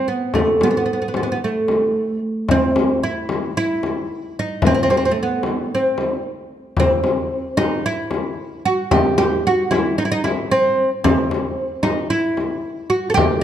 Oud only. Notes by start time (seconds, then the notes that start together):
0.08 B3
0.35 A3
0.63 B3
0.71 B3
0.77 B3
0.86 B3
0.93 B3
1.02 B3
1.08 B3
1.17 B3
1.23 B3
1.32 B3
1.44 A3
2.51 C4
3.03 E4
3.57 E4
4.39 D#4
4.67 C4
4.74 C4
4.83 C4
4.90 C4
4.97 C4
5.05 C4
5.11 A3
5.23 B3
5.75 C4
6.80 C4
7.57 D#4
7.86 E4
8.65 F#4
8.91 G4
9.18 G4
9.47 F#4
9.71 E4
9.98 D#4
10.05 E4
10.12 D#4
10.24 E4
10.51 C4
11.04 C4
11.83 D#4
12.10 E4
12.90 F#4
13.10 A4
13.14 G4